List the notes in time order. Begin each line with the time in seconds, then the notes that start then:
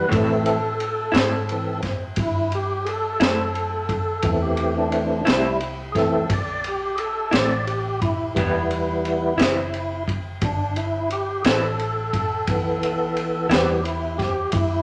0.09 A2 E3 A3 C4 E4, kick, ride
0.14 A3 C4 A4
0.46 ride
0.80 ride
1.12 G#2 A2 A3 C4 E4, ride
1.16 snare
1.49 E3 C4 A4, ride
1.82 kick, snare, ride
2.16 G2 E4, kick, ride
2.52 G4, ride
2.85 G#4, ride
2.89 A4
3.20 F#2 A2 A3 C4 E4, snare, ride
3.55 ride
3.89 kick, ride
4.22 E2 E3 A3 C4, kick, ride
4.42 G4
4.57 ride
4.78 D4
4.92 ride
5.25 C2 A2 A3 C4 E4, snare, ride
5.29 G3 E4
5.60 ride
5.92 E3 A3 G#4, kick, ride
5.96 C4 A4, snare
6.30 B1 D5, kick, ride
6.64 G4, ride
6.96 G#4 A4, ride
7.31 A1 A2 A3 C4 E4 D5, snare, ride
7.67 G4, ride
8.02 E4, kick, ride
8.35 E1 E3 G3 B3, kick, ride
8.39 E4
8.71 ride
9.05 ride
9.37 F#1 E3 G3 B3 E4, snare, ride
9.74 ride
10.08 kick, ride
10.41 G1 D4, kick, ride
10.76 E4, ride
11.10 G4, ride
11.42 A1 E4 G#4, snare, ride
11.46 E3 G3 B3 A4
11.79 ride
12.13 kick, ride
12.47 B1 E3 B3, kick, ride
12.83 ride
13.16 ride
13.49 E2 E3 G3 B3 E4 G4, snare, ride
13.83 E4, ride
14.18 G4, kick, snare, ride
14.52 F#2 E4, kick, ride